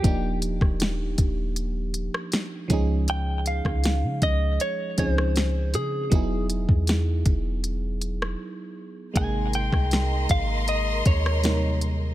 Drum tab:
HH |x-x-x-x-x-x-x-x-|x-x-x-x-x-x-x-x-|x-x-x-x-x-x-----|x-x-x-x-x-x-x-x-|
SD |---ro------ro---|---ro------ro---|----o------r----|---ro------ro---|
BD |o--o--o-------o-|---o--o---o-----|o--o--o---------|o--o--o---o-----|